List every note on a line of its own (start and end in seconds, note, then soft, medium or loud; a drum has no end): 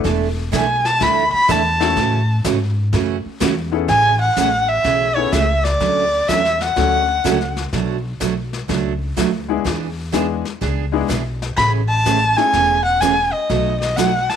0.04 0.51 E1 medium
0.04 0.27 E3 medium
0.04 0.27 A3 medium
0.04 0.27 D4 medium
0.04 0.27 E4 medium
0.04 0.27 A4 medium
0.04 brush sweep medium
0.04 kick soft
0.04 snare soft
0.52 0.99 B1 medium
0.52 0.64 E3 medium
0.52 0.64 A3 medium
0.52 0.65 D4 medium
0.52 0.65 E4 medium
0.52 0.65 A4 medium
0.52 0.87 G#5 medium
0.52 kick soft
0.52 snare medium
0.52 hi-hat pedal soft
0.85 1.04 A5 loud
0.85 snare soft
1.00 1.30 D2 medium
1.00 1.23 E3 medium
1.00 1.23 A3 medium
1.00 1.23 D4 medium
1.00 1.23 E4 medium
1.00 1.23 A4 medium
1.00 1.32 B5 medium
1.00 brush sweep medium
1.00 kick soft
1.00 snare soft
1.33 1.53 B5 loud
1.33 muted upright bass stroke soft
1.48 1.95 E2 loud
1.48 1.60 E3 medium
1.48 1.60 A3 medium
1.48 1.61 D4 medium
1.48 1.61 E4 medium
1.48 1.61 A4 medium
1.48 2.30 A5 medium
1.48 kick soft
1.48 snare medium
1.48 hi-hat pedal medium
1.80 1.95 A3 medium
1.80 1.95 C#4 medium
1.80 1.95 E4 medium
1.80 1.95 F#4 medium
1.80 1.95 A4 medium
1.80 snare soft
1.96 2.43 A2 medium
1.96 2.19 C#3 medium
1.96 2.19 E3 medium
1.96 2.19 A3 medium
1.96 2.19 C#4 medium
1.96 2.20 F#4 medium
1.96 brush sweep medium
1.96 kick soft
1.96 snare soft
2.44 2.91 G#2 medium
2.44 2.56 C#3 medium
2.44 2.57 E3 medium
2.44 2.57 A3 medium
2.44 2.57 C#4 medium
2.44 2.57 F#4 medium
2.44 kick soft
2.44 snare medium
2.44 hi-hat pedal medium
2.93 3.22 F#2 medium
2.93 3.15 C#3 medium
2.93 3.15 E3 medium
2.93 3.16 A3 medium
2.93 3.16 C#4 medium
2.93 3.16 F#4 medium
2.93 brush sweep soft
2.93 kick soft
2.93 snare soft
3.25 muted upright bass stroke soft
3.40 3.87 E2 loud
3.40 3.52 C#3 medium
3.40 3.53 E3 medium
3.40 3.53 A3 medium
3.40 3.53 C#4 medium
3.40 3.53 F#4 medium
3.40 kick soft
3.40 snare medium
3.40 hi-hat pedal medium
3.72 3.86 B3 medium
3.72 3.87 C#4 medium
3.72 3.87 E4 medium
3.72 3.87 G#4 medium
3.72 3.87 A4 medium
3.88 4.27 A1 loud
3.88 4.11 C#3 medium
3.88 4.11 E3 medium
3.88 4.11 A3 medium
3.88 4.12 C#4 medium
3.88 4.12 G#4 medium
3.88 4.18 G#5 loud
3.88 brush sweep medium
3.88 kick soft
3.88 snare soft
4.21 4.70 F#5 medium
4.36 4.77 A1 medium
4.36 4.48 C#3 medium
4.36 4.49 E3 medium
4.36 4.49 A3 medium
4.36 4.49 C#4 medium
4.36 4.49 G#4 medium
4.36 kick soft
4.36 snare medium
4.36 hi-hat pedal medium
4.68 5.17 E5 loud
4.84 5.25 B1 medium
4.84 5.07 C#3 medium
4.84 5.07 E3 medium
4.84 5.07 A3 medium
4.84 5.08 C#4 medium
4.84 5.08 G#4 medium
4.84 brush sweep soft
4.84 kick soft
4.84 snare soft
5.16 5.31 B3 medium
5.16 5.31 C#4 medium
5.16 5.31 E4 medium
5.16 5.31 G#4 medium
5.16 5.31 A4 medium
5.16 5.34 C#5 medium
5.32 5.74 C#2 medium
5.32 5.44 C#3 medium
5.32 5.45 E3 medium
5.32 5.45 A3 medium
5.32 5.45 C#4 medium
5.32 5.45 G#4 medium
5.32 5.65 E5 medium
5.32 kick soft
5.32 snare medium
5.32 hi-hat pedal medium
5.63 6.29 D5 loud
5.63 snare soft
5.80 6.19 D2 medium
5.80 6.03 D3 medium
5.80 6.03 F#3 medium
5.80 6.03 A3 medium
5.80 6.04 C#4 medium
5.80 6.04 F#4 medium
5.80 brush sweep medium
5.80 kick soft
5.80 snare soft
6.28 6.70 E2 medium
6.28 6.41 D3 medium
6.28 6.41 F#3 medium
6.28 6.41 A3 medium
6.28 6.41 C#4 medium
6.28 6.41 F#4 medium
6.28 6.63 E5 loud
6.28 kick soft
6.28 snare medium
6.28 hi-hat pedal medium
6.45 snare soft
6.61 7.57 F#5 medium
6.61 snare soft
6.76 7.18 D2 medium
6.76 6.99 D3 medium
6.76 6.99 F#3 medium
6.76 7.05 A3 medium
6.76 7.00 A3 medium
6.76 7.05 C#4 soft
6.76 7.00 C#4 medium
6.76 7.06 D4 medium
6.76 7.06 F#4 medium
6.76 7.00 F#4 medium
6.76 7.06 A4 medium
6.76 brush sweep soft
6.76 kick soft
6.76 snare soft
7.24 7.66 C#2 medium
7.24 7.37 D3 medium
7.24 7.37 F#3 medium
7.24 7.37 A3 medium
7.24 7.37 C#4 medium
7.24 7.37 F#4 medium
7.24 kick soft
7.24 snare medium
7.24 hi-hat pedal medium
7.41 snare soft
7.57 snare soft
7.73 8.11 B1 loud
7.73 7.96 B2 medium
7.73 7.96 F#3 medium
7.73 7.96 A3 medium
7.73 7.96 D4 medium
7.73 7.96 F#4 medium
7.73 brush sweep medium
7.73 kick soft
7.73 snare soft
8.20 8.62 B1 medium
8.20 8.33 B2 medium
8.20 8.33 F#3 medium
8.20 8.33 A3 medium
8.20 8.33 D4 medium
8.20 8.33 F#4 medium
8.20 kick soft
8.20 snare medium
8.20 hi-hat pedal medium
8.53 snare soft
8.68 9.10 C#2 medium
8.68 8.91 B2 medium
8.68 8.92 F#3 medium
8.68 8.92 A3 medium
8.68 8.92 D4 medium
8.68 8.92 F#4 medium
8.68 brush sweep soft
8.68 kick soft
8.68 snare soft
9.17 9.58 D2 medium
9.17 9.29 B2 medium
9.17 9.29 F#3 medium
9.17 9.29 A3 medium
9.17 9.29 D4 medium
9.17 9.29 F#4 medium
9.17 kick soft
9.17 snare medium
9.17 hi-hat pedal medium
9.48 9.63 G#3 medium
9.48 9.63 B3 medium
9.48 9.64 D4 medium
9.48 9.64 E4 medium
9.48 9.64 G#4 medium
9.64 10.42 E2 medium
9.64 9.88 E3 medium
9.64 9.88 B3 medium
9.64 9.88 D4 medium
9.64 9.88 G#4 medium
9.64 brush sweep medium
9.64 kick soft
9.64 snare soft
10.12 10.25 E3 medium
10.12 10.42 G#3 medium
10.12 10.25 B3 medium
10.12 10.42 B3 medium
10.12 10.25 D4 medium
10.12 10.42 D4 medium
10.12 10.42 E4 medium
10.12 10.25 G#4 medium
10.12 10.43 G#4 medium
10.12 kick soft
10.12 snare medium
10.12 hi-hat pedal medium
10.45 snare soft
10.61 11.02 C#2 medium
10.61 10.84 E3 medium
10.61 10.84 B3 medium
10.61 10.84 D4 medium
10.61 10.84 G#4 medium
10.61 brush sweep soft
10.61 kick soft
10.61 snare soft
10.92 11.07 G#3 medium
10.92 11.07 B3 medium
10.92 11.07 D4 medium
10.92 11.08 E4 medium
10.92 11.08 G#4 medium
11.08 11.50 B1 medium
11.08 11.21 E3 medium
11.08 11.21 B3 medium
11.08 11.21 D4 medium
11.08 11.22 G#4 medium
11.08 kick soft
11.08 snare medium
11.08 hi-hat pedal medium
11.42 snare soft
11.57 12.34 A1 medium
11.57 11.80 C#3 medium
11.57 11.80 E3 medium
11.57 11.80 A3 medium
11.57 11.80 C#4 medium
11.57 11.80 G#4 medium
11.57 11.71 B5 medium
11.57 brush sweep medium
11.57 kick soft
11.57 snare soft
11.89 12.38 A5 loud
12.05 12.17 C#3 medium
12.05 12.18 E3 medium
12.05 12.18 A3 medium
12.05 12.18 C#4 medium
12.05 12.18 G#4 medium
12.05 kick soft
12.05 snare medium
12.05 hi-hat pedal medium
12.36 12.51 A3 medium
12.36 12.52 C#4 medium
12.36 12.52 E4 medium
12.36 12.52 G#4 medium
12.36 12.52 A4 medium
12.36 12.84 G#5 loud
12.36 snare soft
12.53 13.30 E1 medium
12.53 12.76 C#3 medium
12.53 12.76 E3 medium
12.53 12.76 A3 medium
12.53 12.76 C#4 medium
12.53 12.77 G#4 medium
12.53 brush sweep soft
12.53 kick soft
12.53 snare soft
12.85 13.02 F#5 medium
13.01 13.13 C#3 medium
13.01 13.13 E3 medium
13.01 13.14 A3 medium
13.01 13.14 C#4 medium
13.01 13.14 G#4 medium
13.01 13.34 G#5 medium
13.01 kick soft
13.01 snare medium
13.01 hi-hat pedal medium
13.32 13.80 D#5 medium
13.49 14.26 B1 medium
13.49 13.72 B2 medium
13.49 13.72 F#3 medium
13.49 13.72 A3 medium
13.49 13.72 D#4 medium
13.49 13.73 F#4 medium
13.49 brush sweep medium
13.49 kick soft
13.49 snare soft
13.81 13.98 D#5 medium
13.81 snare soft
13.96 14.09 B2 medium
13.96 14.09 F#3 medium
13.96 14.10 A3 medium
13.96 14.10 D#4 medium
13.96 14.10 F#4 medium
13.96 14.30 F#5 medium
13.96 kick soft
13.96 snare medium
13.96 hi-hat pedal medium
14.29 14.36 A5 medium
14.29 snare soft